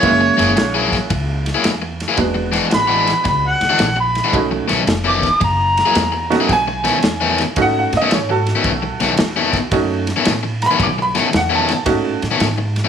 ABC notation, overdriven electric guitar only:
X:1
M:4/4
L:1/16
Q:"Swing" 1/4=112
K:Bmix
V:1 name="Overdriven electric guitar"
z2 [F,^A,EG] z2 [F,A,EG] z4 z [F,A,EG] z3 [F,A,EG] | z2 [E,G,=DF] z2 [E,G,DF] z4 z [E,G,DF] z3 [E,G,DF] | z2 [B,,D,A,C] z2 [B,,D,A,C] z4 z [F,^A,EG] z3 [F,A,EG] | z2 [B,,D,A,C] z2 [B,,D,A,C] z4 z [B,,D,A,C] z3 [B,,D,A,C] |
z2 [B,,D,A,C] z2 [B,,D,A,C] z4 z [B,,D,A,C] z3 [B,,D,A,C] | z2 [B,,D,A,C] z2 [B,,D,A,C] z4 z [B,,D,A,C] z3 [B,,D,A,C] |]